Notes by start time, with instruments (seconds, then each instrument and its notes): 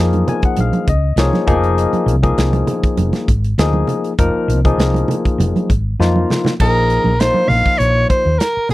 Already playing: fretless electric bass F2, tine electric piano F3 A#3 D#4 G#4
0.13 closed hi-hat, high conga
0.28 tine electric piano G#5, closed hi-hat, low conga
0.42 tine electric piano F#5, muted fretless electric bass stroke, kick, closed hi-hat
0.56 fretless electric bass A#1, closed hi-hat, high conga
0.60 tine electric piano F5
0.73 closed hi-hat, high conga
0.88 fretless electric bass C#2, tine electric piano D#5, kick, closed hi-hat
1.16 fretless electric bass C2, tine electric piano F3 A#3 D#4 G#4 C#5, snare, closed hi-hat
1.33 snare, high conga
1.47 fretless electric bass F1, tine electric piano F3 A#3 D#4 G#4 D#5, kick, closed hi-hat, low conga
1.63 closed hi-hat
1.78 closed hi-hat
1.93 muted fretless electric bass stroke, closed hi-hat, high conga
2.06 fretless electric bass C2, closed hi-hat
2.22 tine electric piano F3 A#3 D#4 G#4, kick, closed hi-hat
2.38 fretless electric bass C2, snare, closed hi-hat
2.53 closed hi-hat, high conga
2.67 closed hi-hat, low conga
2.83 muted fretless electric bass stroke, kick, closed hi-hat
2.97 fretless electric bass F1, closed hi-hat, high conga
3.13 snare, closed hi-hat, high conga
3.28 fretless electric bass G#1, kick, closed hi-hat
3.44 closed hi-hat
3.58 fretless electric bass D2, tine electric piano F3 A#3 D#4 G#4, snare, closed hi-hat
3.73 high conga
3.87 closed hi-hat, low conga
4.04 closed hi-hat
4.19 fretless electric bass F1, tine electric piano F3 A#3 D#4 A#4, kick, closed hi-hat
4.35 muted fretless electric bass stroke
4.48 fretless electric bass C2, closed hi-hat
4.65 tine electric piano F3 A#3 D#4 G#4, kick, closed hi-hat
4.78 fretless electric bass C2, snare, closed hi-hat
4.94 closed hi-hat, high conga
5.08 closed hi-hat, low conga
5.25 muted fretless electric bass stroke, kick, closed hi-hat
5.38 fretless electric bass F1, closed hi-hat, high conga, low conga
5.56 closed hi-hat, high conga
5.70 fretless electric bass G#1, kick, closed hi-hat
5.99 fretless electric bass F2, tine electric piano F3 A#3 D#4 F4, snare, high conga
6.16 high conga
6.30 snare, low conga
6.45 snare, low conga
6.60 fretless electric bass A#1, tine electric piano F3 A#3 D#4 G#4, soprano saxophone A#4, kick, crash
6.90 closed hi-hat
7.04 fretless electric bass A#1, high conga
7.20 tine electric piano F3 A#3 D#4 F4, soprano saxophone C5, snare, closed hi-hat
7.34 high conga
7.48 fretless electric bass A#1, soprano saxophone F5, open hi-hat, low conga
7.66 kick
7.78 fretless electric bass A#1, soprano saxophone C#5, closed hi-hat
8.09 soprano saxophone C5, kick, closed hi-hat
8.26 fretless electric bass D#2
8.39 soprano saxophone A#4, snare, closed hi-hat
8.57 muted fretless electric bass stroke
8.69 fretless electric bass A#1, soprano saxophone G#4, closed hi-hat, low conga